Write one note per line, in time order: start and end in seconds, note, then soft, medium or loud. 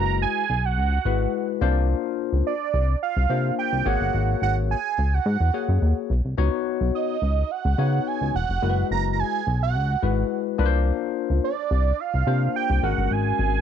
0.00 0.26 F#1 loud
0.00 0.43 G#3 medium
0.00 0.43 E4 medium
0.00 0.43 F#4 medium
0.00 0.43 B4 medium
0.00 0.22 A#5 loud
0.22 0.67 G#5 loud
0.50 0.79 B1 loud
0.65 1.49 F#5 loud
0.77 0.99 C#2 loud
1.05 1.27 G#1 medium
1.05 1.61 G#3 medium
1.05 1.61 E4 medium
1.05 1.62 F#4 medium
1.05 1.62 B4 medium
1.61 1.94 C2 loud
1.61 2.51 A#3 medium
1.61 2.52 D4 medium
1.61 2.52 F4 medium
1.61 2.52 C5 medium
2.33 2.43 C#2 medium
2.47 2.98 D5 medium
2.74 2.95 C2 medium
3.03 3.54 F5 medium
3.17 3.27 C2 medium
3.29 3.51 C3 loud
3.29 3.84 A#3 medium
3.29 3.86 D4 medium
3.29 3.86 F4 medium
3.29 3.86 C5 medium
3.59 3.88 G5 loud
3.73 3.83 C2 medium
3.85 3.97 G#1 loud
3.85 4.76 A#3 medium
3.85 4.76 F#4 medium
3.85 4.76 G#4 medium
3.85 4.76 C#5 medium
3.85 4.42 F#5 loud
4.01 4.11 G1 medium
4.14 4.35 G#1 loud
4.42 4.75 G#1 medium
4.42 4.55 F#5 loud
4.71 5.15 G#5 loud
4.98 5.19 C#2 medium
5.14 5.97 F#5 loud
5.26 5.37 G#2 loud
5.40 5.51 E2 medium
5.54 6.12 A#3 medium
5.54 6.12 F#4 medium
5.54 6.12 G#4 medium
5.54 6.12 C#5 medium
5.69 5.79 F#2 medium
5.82 5.93 D#2 medium
6.10 6.21 B1 medium
6.25 6.35 C2 medium
6.38 6.49 C#2 loud
6.38 7.15 B3 medium
6.38 7.15 D#4 medium
6.38 7.16 F#4 medium
6.38 7.16 C#5 medium
6.81 6.91 B1 medium
6.95 7.52 D#5 medium
7.22 7.44 C#2 medium
7.51 8.09 F#5 loud
7.65 7.75 C#2 medium
7.78 8.00 C#3 medium
7.78 8.36 B3 medium
7.78 8.36 D#4 medium
7.78 8.36 F#4 medium
7.78 8.36 C#5 medium
8.07 8.35 G#5 loud
8.21 8.31 C#2 loud
8.34 8.46 E1 loud
8.34 8.87 F#5 loud
8.49 8.59 F1 medium
8.62 8.84 F#1 loud
8.62 9.40 G#3 medium
8.62 9.40 E4 medium
8.62 9.40 F#4 medium
8.62 8.70 A#4 medium
8.69 9.43 B4 medium
8.91 9.23 F#1 loud
8.91 9.11 A#5 loud
9.13 9.21 A#5 medium
9.20 9.62 G#5 loud
9.47 9.76 B1 loud
9.63 10.42 F#5 loud
9.75 9.96 C#2 loud
10.02 10.24 G#1 medium
10.02 10.59 G#3 medium
10.02 10.59 E4 medium
10.02 10.59 F#4 medium
10.02 10.58 B4 medium
10.58 10.92 C2 loud
10.58 11.49 A#3 medium
10.58 11.49 D4 medium
10.58 11.49 F4 medium
10.58 10.66 B4 medium
10.66 11.52 C5 loud
11.30 11.40 C#2 medium
11.44 12.02 D5 medium
11.71 11.92 C2 loud
12.00 12.56 F5 loud
12.14 12.24 C2 medium
12.27 12.48 C3 medium
12.27 12.83 A#3 medium
12.27 12.83 D4 medium
12.27 12.83 F4 medium
12.27 12.83 C5 medium
12.56 12.85 G5 loud
12.70 12.80 C2 medium
12.83 12.94 G#1 loud
12.83 13.61 G#3 medium
12.83 13.61 C#4 medium
12.83 13.61 F#4 medium
12.83 13.61 A#4 medium
12.83 13.14 F#5 loud
12.98 13.08 G1 medium
13.11 13.32 G#1 loud
13.11 13.61 G#5 loud
13.39 13.61 G#1 loud